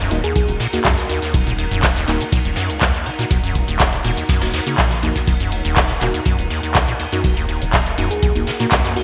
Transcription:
Already playing: ambient pad D#4 A#4 F#5 A#5
0.00 acid bass F#2
0.11 analog synth bass D#1, acid bass C#2, synth stab A#3 D#4 F#4, open hi-hat, ride
0.24 acid bass D#2, synth pluck G#4, closed hi-hat, cabasa
0.36 acid bass D#2, synth pluck G#4, kick, closed hi-hat, ride, cabasa
0.48 analog synth bass D#1, acid bass D#3, synth stab A#3 D#4 F#4, closed hi-hat, cabasa
0.60 acid bass A#2, snare, open hi-hat, ride
0.73 acid bass D#2, synth stab A#3 D#4 F#4, snare, closed hi-hat, cabasa
0.85 analog synth bass C#2, acid bass F#2, kick, snare, clap, closed hi-hat, ride, cabasa
0.98 acid bass C#2, snare, closed hi-hat, cabasa
1.09 acid bass D#2, synth stab A#3 D#4 F#4, open hi-hat, ride
1.22 acid bass D#2, snare, closed hi-hat, cabasa
1.34 analog synth bass D#1, acid bass D#3, kick, closed hi-hat, ride, cabasa
1.47 acid bass A#2, closed hi-hat, ride, cabasa
1.58 acid bass D#2, open hi-hat, ride
1.71 analog synth bass D#1, acid bass F#2, closed hi-hat, cabasa
1.83 acid bass C#2, kick, snare, clap, closed hi-hat, ride, cabasa
1.96 acid bass D#2, snare, closed hi-hat, cabasa
2.08 analog synth bass D#1, acid bass D#2, synth stab A#3 D#4 F#4, clap, open hi-hat, ride
2.21 acid bass D#3, closed hi-hat, ride, cabasa
2.32 acid bass A#2, kick, closed hi-hat, ride, cabasa
2.45 analog synth bass D#1, acid bass D#2, closed hi-hat, cabasa
2.56 acid bass F#2, snare, open hi-hat, ride
2.70 acid bass C#2, closed hi-hat, cabasa
2.81 analog synth bass C#2, acid bass D#2, kick, snare, clap, closed hi-hat, ride, cabasa
2.94 acid bass D#2, closed hi-hat, cabasa
3.06 acid bass D#3, open hi-hat, ride
3.19 acid bass A#2, synth stab A#3 D#4 F#4, snare, open hi-hat, cabasa
3.30 analog synth bass D#1, acid bass D#2, kick, closed hi-hat, ride, cabasa
3.44 acid bass F#2, closed hi-hat, ride, cabasa
3.55 acid bass C#2, kick, open hi-hat, ride
3.68 analog synth bass D#1, acid bass D#2, closed hi-hat, cabasa
3.80 kick, snare, clap, closed hi-hat, ride, cabasa
3.93 acid bass D#3, closed hi-hat, cabasa
4.04 analog synth bass D#1, acid bass A#2, synth stab A#3 D#4 F#4, open hi-hat, ride
4.17 acid bass D#2, closed hi-hat, ride, cabasa
4.29 acid bass F#2, kick, snare, closed hi-hat, ride, cabasa
4.41 analog synth bass D#1, acid bass C#2, synth stab A#3 D#4 F#4, snare, closed hi-hat, ride, cabasa
4.53 acid bass D#2, snare, open hi-hat, ride
4.67 acid bass C#3, synth stab A#3 D#4 F#4, closed hi-hat, ride, cabasa
4.78 analog synth bass A#1, acid bass A#2, kick, snare, clap, open hi-hat, ride, cabasa
4.91 acid bass D#3, snare, closed hi-hat, cabasa
5.03 acid bass D#2, synth stab A#3 D#4 F#4, open hi-hat, ride
5.16 acid bass D#2, kick, snare, closed hi-hat, cabasa
5.27 analog synth bass D#1, acid bass D#2, kick, closed hi-hat, ride, cabasa
5.40 acid bass F#2, closed hi-hat, ride, cabasa
5.52 acid bass C#2, open hi-hat, ride
5.65 analog synth bass D#1, acid bass D#2, closed hi-hat, cabasa
5.76 kick, snare, clap, closed hi-hat, ride, cabasa
5.89 acid bass D#3, snare, closed hi-hat, cabasa
6.01 analog synth bass D#1, acid bass A#2, synth stab A#3 D#4 F#4, clap, open hi-hat, ride
6.14 acid bass D#2, closed hi-hat, ride, cabasa
6.25 acid bass F#2, kick, closed hi-hat, ride, cabasa
6.39 analog synth bass D#1, acid bass C#2, closed hi-hat, cabasa
6.50 acid bass D#2, snare, open hi-hat, ride
6.63 acid bass D#2, closed hi-hat, cabasa
6.75 analog synth bass C#2, acid bass D#3, kick, snare, clap, closed hi-hat, ride, cabasa
6.88 acid bass A#2, closed hi-hat, cabasa
7.00 acid bass D#2, open hi-hat, ride
7.12 acid bass F#2, synth stab A#3 D#4 F#4, snare, open hi-hat, cabasa
7.24 analog synth bass D#1, acid bass C#2, kick, closed hi-hat, ride, cabasa
7.37 acid bass D#2, closed hi-hat, ride, cabasa
7.49 acid bass D#2, open hi-hat, ride
7.62 analog synth bass D#1, acid bass D#3, closed hi-hat, cabasa
7.73 acid bass A#2, kick, snare, clap, closed hi-hat, ride, cabasa
7.86 acid bass D#2, closed hi-hat, cabasa
7.98 analog synth bass D#1, acid bass F#2, synth stab A#3 D#4 F#4, open hi-hat, ride
8.11 acid bass C#2, synth pluck G#4, closed hi-hat, cabasa
8.23 acid bass D#2, synth pluck G#4, kick, closed hi-hat, ride, cabasa
8.35 analog synth bass D#1, acid bass D#2, synth stab A#3 D#4 F#4, closed hi-hat, cabasa
8.46 acid bass D#3, snare, open hi-hat, ride
8.60 acid bass A#2, synth stab A#3 D#4 F#4, snare, closed hi-hat, cabasa
8.70 analog synth bass C#2, acid bass D#2, kick, snare, clap, closed hi-hat, ride, cabasa
8.84 acid bass F#2, snare, closed hi-hat, cabasa
8.96 acid bass C#2, synth stab A#3 D#4 F#4, synth pluck F#4, open hi-hat, ride

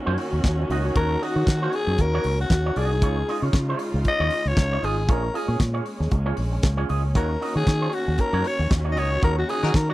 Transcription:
Already playing: string section D#3 A#3 C#4 F#4
0.06 fingered electric bass F#2, clean electric guitar D#4 F#4 C#5
0.18 muted clean electric guitar stroke, open hi-hat
0.32 fingered electric bass D#2, muted clean electric guitar stroke
0.44 fingered electric bass D#2, muted clean electric guitar stroke, kick, snare, closed hi-hat
0.59 muted clean electric guitar stroke
0.69 fingered electric bass C#2, clean electric guitar D#4 F#4 D#5, open hi-hat
0.85 clean electric guitar D#4 F#4 C#5
0.96 fingered electric bass D#2, clean electric guitar D#4 F#4 C#5, alto saxophone A#4, kick, closed hi-hat
1.10 muted clean electric guitar stroke
1.21 clean electric guitar D#4 F#4 D#5, alto saxophone F#4, open hi-hat
1.36 fingered electric bass D#3, clean electric guitar D#4 F#4 C#5
1.47 fingered electric bass D#3, muted clean electric guitar stroke, kick, snare, closed hi-hat
1.62 clean electric guitar D#4 F#4 C#5
1.73 alto saxophone G#4, muted clean electric guitar stroke, open hi-hat
1.87 fingered electric bass F#2, muted clean electric guitar stroke
1.98 fingered electric bass D#2, alto saxophone A#4, muted clean electric guitar stroke, kick, closed hi-hat
2.14 clean electric guitar D#4 F#4 C#5
2.24 fingered electric bass C#2, muted clean electric guitar stroke, open hi-hat
2.40 alto saxophone F#4, muted clean electric guitar stroke
2.50 fingered electric bass D#2, muted clean electric guitar stroke, kick, snare, closed hi-hat
2.66 clean electric guitar D#4 F#4 C#5
2.76 fingered electric bass C2, clean electric guitar D#4 F#4 D#5, alto saxophone G#4, open hi-hat
2.91 muted clean electric guitar stroke
3.02 fingered electric bass C#2, string section C#3 G#3 D#4 F4, clean electric guitar D#4 F4 C#5, kick, closed hi-hat
3.17 muted clean electric guitar stroke
3.28 clean electric guitar D#4 F4 D#5, open hi-hat
3.42 fingered electric bass C#3, clean electric guitar D#4 F4 C#5
3.53 fingered electric bass C#3, muted clean electric guitar stroke, kick, snare, closed hi-hat
3.69 clean electric guitar D#4 F4 C#5
3.79 muted clean electric guitar stroke, open hi-hat
3.94 fingered electric bass C#2, muted clean electric guitar stroke
4.04 alto saxophone D#5, muted clean electric guitar stroke, kick, closed hi-hat
4.20 fingered electric bass D#2, clean electric guitar D#4 F4 C#5
4.30 muted clean electric guitar stroke, open hi-hat
4.45 fingered electric bass C#2, alto saxophone C#5, muted clean electric guitar stroke
4.57 fingered electric bass C#2, muted clean electric guitar stroke, kick, snare, closed hi-hat
4.72 clean electric guitar D#4 F4 C#5
4.83 fingered electric bass G#1, clean electric guitar D#4 F4 D#5, alto saxophone G#4, open hi-hat
5.07 fingered electric bass A#1, string section G#3 A#3 C#4, clean electric guitar F4 G#4 C#5, kick, closed hi-hat
5.11 alto saxophone A#4
5.24 muted clean electric guitar stroke
5.34 clean electric guitar F4 G#4 D#5, alto saxophone G#4, open hi-hat
5.48 fingered electric bass A#2, clean electric guitar F4 G#4 C#5
5.60 fingered electric bass A#2, muted clean electric guitar stroke, kick, snare, closed hi-hat
5.74 clean electric guitar F4 G#4 C#5
5.85 muted clean electric guitar stroke, open hi-hat
6.00 fingered electric bass D#2, muted clean electric guitar stroke, snare
6.11 fingered electric bass C#2, muted clean electric guitar stroke, kick, closed hi-hat
6.26 clean electric guitar F4 G#4 C#5
6.36 fingered electric bass A#1, muted clean electric guitar stroke, open hi-hat
6.52 muted clean electric guitar stroke
6.63 fingered electric bass C#2, muted clean electric guitar stroke, kick, snare, closed hi-hat
6.77 clean electric guitar F4 G#4 C#5
6.88 fingered electric bass C#2, clean electric guitar F4 G#4 D#5, open hi-hat
7.03 muted clean electric guitar stroke
7.15 fingered electric bass D#2, string section D#3 F#4, clean electric guitar D#4 F#4 C#5, alto saxophone A#4, kick, closed hi-hat
7.30 muted clean electric guitar stroke
7.41 clean electric guitar D#4 F#4 D#5, open hi-hat
7.55 fingered electric bass D#3, clean electric guitar D#4 F#4 C#5, alto saxophone G#4
7.67 fingered electric bass D#3, muted clean electric guitar stroke, kick, snare, closed hi-hat
7.82 clean electric guitar D#4 F#4 C#5
7.93 alto saxophone F#4, muted clean electric guitar stroke, open hi-hat
8.07 fingered electric bass D#2, muted clean electric guitar stroke
8.18 alto saxophone A#4, muted clean electric guitar stroke, kick, closed hi-hat
8.33 fingered electric bass F#2, clean electric guitar D#4 F#4 C#5
8.44 alto saxophone C#5, muted clean electric guitar stroke, open hi-hat
8.59 fingered electric bass D#2, muted clean electric guitar stroke
8.70 fingered electric bass D#2, muted clean electric guitar stroke, kick, snare, closed hi-hat
8.85 clean electric guitar D#4 F#4 C#5
8.92 alto saxophone D#5
8.96 fingered electric bass C#2, clean electric guitar D#4 F#4 D#5, alto saxophone C#5, open hi-hat
9.11 muted clean electric guitar stroke
9.22 fingered electric bass D#2, clean electric guitar D#4 F#4 C#5, alto saxophone A#4, kick, closed hi-hat
9.37 alto saxophone F#4, muted clean electric guitar stroke
9.49 clean electric guitar D#4 F#4 D#5, alto saxophone G#4, open hi-hat
9.63 fingered electric bass D#3, horn section F#3 D#4 A#4, clean electric guitar D#4 F#4 C#5
9.74 fingered electric bass D#3, alto saxophone A#4, muted clean electric guitar stroke, kick, snare, closed hi-hat
9.89 clean electric guitar D#4 F#4 C#5, alto saxophone F#4

